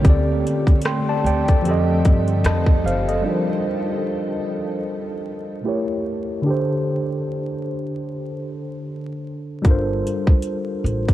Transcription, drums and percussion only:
0, 0, Header, 1, 2, 480
1, 0, Start_track
1, 0, Key_signature, -2, "minor"
1, 0, Tempo, 800000
1, 28, Time_signature, 4, 2, 24, 8
1, 6682, End_track
2, 0, Start_track
2, 0, Title_t, "Drums"
2, 27, Note_on_c, 9, 42, 68
2, 28, Note_on_c, 9, 36, 125
2, 87, Note_off_c, 9, 42, 0
2, 88, Note_off_c, 9, 36, 0
2, 280, Note_on_c, 9, 42, 64
2, 340, Note_off_c, 9, 42, 0
2, 402, Note_on_c, 9, 36, 90
2, 408, Note_on_c, 9, 42, 30
2, 462, Note_off_c, 9, 36, 0
2, 468, Note_off_c, 9, 42, 0
2, 490, Note_on_c, 9, 42, 77
2, 512, Note_on_c, 9, 26, 61
2, 514, Note_on_c, 9, 37, 117
2, 550, Note_off_c, 9, 42, 0
2, 572, Note_off_c, 9, 26, 0
2, 574, Note_off_c, 9, 37, 0
2, 758, Note_on_c, 9, 42, 62
2, 818, Note_off_c, 9, 42, 0
2, 889, Note_on_c, 9, 42, 40
2, 891, Note_on_c, 9, 36, 83
2, 949, Note_off_c, 9, 42, 0
2, 951, Note_off_c, 9, 36, 0
2, 991, Note_on_c, 9, 42, 65
2, 1051, Note_off_c, 9, 42, 0
2, 1229, Note_on_c, 9, 42, 66
2, 1232, Note_on_c, 9, 36, 95
2, 1289, Note_off_c, 9, 42, 0
2, 1292, Note_off_c, 9, 36, 0
2, 1366, Note_on_c, 9, 42, 30
2, 1426, Note_off_c, 9, 42, 0
2, 1467, Note_on_c, 9, 26, 61
2, 1468, Note_on_c, 9, 42, 74
2, 1476, Note_on_c, 9, 37, 113
2, 1527, Note_off_c, 9, 26, 0
2, 1528, Note_off_c, 9, 42, 0
2, 1536, Note_off_c, 9, 37, 0
2, 1599, Note_on_c, 9, 36, 89
2, 1659, Note_off_c, 9, 36, 0
2, 1726, Note_on_c, 9, 42, 61
2, 1786, Note_off_c, 9, 42, 0
2, 1852, Note_on_c, 9, 42, 34
2, 1912, Note_off_c, 9, 42, 0
2, 5788, Note_on_c, 9, 42, 66
2, 5789, Note_on_c, 9, 36, 105
2, 5848, Note_off_c, 9, 42, 0
2, 5849, Note_off_c, 9, 36, 0
2, 6041, Note_on_c, 9, 42, 57
2, 6101, Note_off_c, 9, 42, 0
2, 6163, Note_on_c, 9, 36, 89
2, 6223, Note_off_c, 9, 36, 0
2, 6254, Note_on_c, 9, 42, 77
2, 6314, Note_off_c, 9, 42, 0
2, 6517, Note_on_c, 9, 42, 55
2, 6577, Note_off_c, 9, 42, 0
2, 6651, Note_on_c, 9, 36, 81
2, 6651, Note_on_c, 9, 42, 37
2, 6682, Note_off_c, 9, 36, 0
2, 6682, Note_off_c, 9, 42, 0
2, 6682, End_track
0, 0, End_of_file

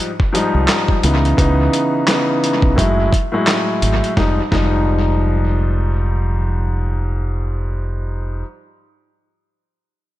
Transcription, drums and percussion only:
0, 0, Header, 1, 2, 480
1, 0, Start_track
1, 0, Key_signature, -4, "minor"
1, 0, Tempo, 697674
1, 949, Time_signature, 4, 2, 24, 8
1, 7016, End_track
2, 0, Start_track
2, 0, Title_t, "Drums"
2, 0, Note_on_c, 9, 42, 86
2, 67, Note_off_c, 9, 42, 0
2, 136, Note_on_c, 9, 36, 95
2, 204, Note_off_c, 9, 36, 0
2, 239, Note_on_c, 9, 42, 77
2, 308, Note_off_c, 9, 42, 0
2, 468, Note_on_c, 9, 39, 99
2, 472, Note_on_c, 9, 38, 123
2, 476, Note_on_c, 9, 42, 99
2, 537, Note_off_c, 9, 39, 0
2, 541, Note_off_c, 9, 38, 0
2, 544, Note_off_c, 9, 42, 0
2, 609, Note_on_c, 9, 36, 89
2, 677, Note_off_c, 9, 36, 0
2, 712, Note_on_c, 9, 42, 81
2, 780, Note_off_c, 9, 42, 0
2, 861, Note_on_c, 9, 42, 49
2, 930, Note_off_c, 9, 42, 0
2, 950, Note_on_c, 9, 36, 107
2, 954, Note_on_c, 9, 42, 81
2, 1019, Note_off_c, 9, 36, 0
2, 1023, Note_off_c, 9, 42, 0
2, 1193, Note_on_c, 9, 42, 73
2, 1262, Note_off_c, 9, 42, 0
2, 1428, Note_on_c, 9, 39, 96
2, 1432, Note_on_c, 9, 38, 122
2, 1437, Note_on_c, 9, 42, 82
2, 1497, Note_off_c, 9, 39, 0
2, 1501, Note_off_c, 9, 38, 0
2, 1506, Note_off_c, 9, 42, 0
2, 1676, Note_on_c, 9, 42, 74
2, 1745, Note_off_c, 9, 42, 0
2, 1805, Note_on_c, 9, 36, 91
2, 1874, Note_off_c, 9, 36, 0
2, 1912, Note_on_c, 9, 36, 86
2, 1918, Note_on_c, 9, 42, 86
2, 1981, Note_off_c, 9, 36, 0
2, 1987, Note_off_c, 9, 42, 0
2, 2150, Note_on_c, 9, 36, 91
2, 2159, Note_on_c, 9, 42, 75
2, 2219, Note_off_c, 9, 36, 0
2, 2228, Note_off_c, 9, 42, 0
2, 2387, Note_on_c, 9, 39, 97
2, 2391, Note_on_c, 9, 38, 119
2, 2395, Note_on_c, 9, 42, 96
2, 2456, Note_off_c, 9, 39, 0
2, 2460, Note_off_c, 9, 38, 0
2, 2463, Note_off_c, 9, 42, 0
2, 2630, Note_on_c, 9, 42, 76
2, 2699, Note_off_c, 9, 42, 0
2, 2779, Note_on_c, 9, 42, 49
2, 2847, Note_off_c, 9, 42, 0
2, 2869, Note_on_c, 9, 36, 101
2, 2870, Note_on_c, 9, 38, 86
2, 2938, Note_off_c, 9, 36, 0
2, 2939, Note_off_c, 9, 38, 0
2, 3109, Note_on_c, 9, 36, 98
2, 3110, Note_on_c, 9, 38, 82
2, 3178, Note_off_c, 9, 36, 0
2, 3179, Note_off_c, 9, 38, 0
2, 7016, End_track
0, 0, End_of_file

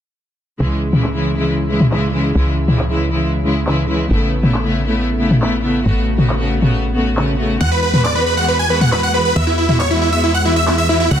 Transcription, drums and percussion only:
0, 0, Header, 1, 2, 480
1, 0, Start_track
1, 0, Tempo, 437956
1, 658, Time_signature, 4, 2, 24, 8
1, 12275, End_track
2, 0, Start_track
2, 0, Title_t, "Drums"
2, 1018, Note_on_c, 9, 47, 72
2, 1127, Note_off_c, 9, 47, 0
2, 1137, Note_on_c, 9, 39, 116
2, 1247, Note_off_c, 9, 39, 0
2, 1977, Note_on_c, 9, 47, 68
2, 2087, Note_off_c, 9, 47, 0
2, 2097, Note_on_c, 9, 39, 116
2, 2207, Note_off_c, 9, 39, 0
2, 2938, Note_on_c, 9, 47, 74
2, 3047, Note_off_c, 9, 47, 0
2, 3058, Note_on_c, 9, 39, 116
2, 3167, Note_off_c, 9, 39, 0
2, 4018, Note_on_c, 9, 39, 118
2, 4127, Note_off_c, 9, 39, 0
2, 4858, Note_on_c, 9, 47, 75
2, 4968, Note_off_c, 9, 47, 0
2, 4978, Note_on_c, 9, 39, 116
2, 5087, Note_off_c, 9, 39, 0
2, 5817, Note_on_c, 9, 47, 77
2, 5927, Note_off_c, 9, 47, 0
2, 5938, Note_on_c, 9, 39, 114
2, 6047, Note_off_c, 9, 39, 0
2, 6778, Note_on_c, 9, 47, 77
2, 6887, Note_off_c, 9, 47, 0
2, 6898, Note_on_c, 9, 39, 111
2, 7008, Note_off_c, 9, 39, 0
2, 7258, Note_on_c, 9, 47, 61
2, 7367, Note_off_c, 9, 47, 0
2, 7858, Note_on_c, 9, 39, 108
2, 7967, Note_off_c, 9, 39, 0
2, 8697, Note_on_c, 9, 47, 80
2, 8807, Note_off_c, 9, 47, 0
2, 8818, Note_on_c, 9, 39, 108
2, 8927, Note_off_c, 9, 39, 0
2, 9657, Note_on_c, 9, 47, 76
2, 9767, Note_off_c, 9, 47, 0
2, 9778, Note_on_c, 9, 39, 108
2, 9887, Note_off_c, 9, 39, 0
2, 10618, Note_on_c, 9, 47, 74
2, 10727, Note_off_c, 9, 47, 0
2, 10738, Note_on_c, 9, 39, 112
2, 10847, Note_off_c, 9, 39, 0
2, 11698, Note_on_c, 9, 39, 105
2, 11807, Note_off_c, 9, 39, 0
2, 12275, End_track
0, 0, End_of_file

